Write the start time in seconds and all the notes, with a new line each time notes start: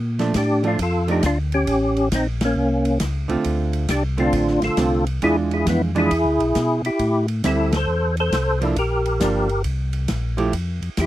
Already playing: A#2
0.19 F3 A3 D4, snare, ride
0.34 A2 D4 G4, kick, snare, hi-hat pedal, ride
0.63 F3 A3 D4, ride
0.67 D4 F4
0.79 F2 F4 A4, kick, ride
1.08 F3 A3 D4 D#4 G4, ride
1.23 D2 D4 F4, kick, snare, hi-hat pedal, ride
1.52 C#4 G4, ride
1.67 A1, kick, ride
1.97 ride
2.12 A#1 C4 D#4, kick, snare, hi-hat pedal, ride
2.41 A#3, snare, ride
2.45 C#4
2.56 C2
2.85 ride
3.00 C#2, kick, snare, hi-hat pedal, ride
3.28 C#2 D3 A3 C4 F4, ride
3.44 D2, kick, ride
3.73 ride
3.88 C2 D4 G4, kick, snare, hi-hat pedal, ride
4.17 D3 A3 C4 D4 F4, ride
4.33 A1, kick, ride
4.48 snare
4.62 A1 F4 A4, snare, ride
4.77 C2 D3 A3 C4 F4, kick, snare, hi-hat pedal, ride
5.07 ride
5.22 E2 E3 G#3 D4 E4 F4 G#4, kick, ride
5.51 E4 G#4, ride
5.67 F2 B3 E4, kick, snare, hi-hat pedal, ride
5.95 E3 G#3 D4 E4 F4, ride
5.99 G#4
6.11 E2, kick, ride
6.24 D2
6.39 B1, ride
6.55 B2, kick, snare, hi-hat pedal, ride
6.82 B2 E4, ride
6.87 G4
6.99 A2, kick, ride
7.28 ride
7.43 D2 G3 C4 E4, kick, snare, hi-hat pedal, ride
7.48 A4
7.72 A4, snare, ride
7.77 C5
7.87 E2
8.17 A4 C5, ride
8.32 C2, kick, snare, hi-hat pedal, ride
8.61 F3 A#3 D4 E4 A4, ride
8.76 A#1 G4 A#4, kick, ride
9.06 ride
9.20 G1 F3 A#3 D4, kick, snare, hi-hat pedal, ride
9.49 ride
9.64 C2, kick, ride
9.93 ride
10.08 A#1, kick, snare, hi-hat pedal, ride
10.37 F3 A3 E4 G4, ride
10.53 F2, kick, ride
10.82 F2, ride
10.97 E2 G4, kick, snare, hi-hat pedal, ride
11.01 E4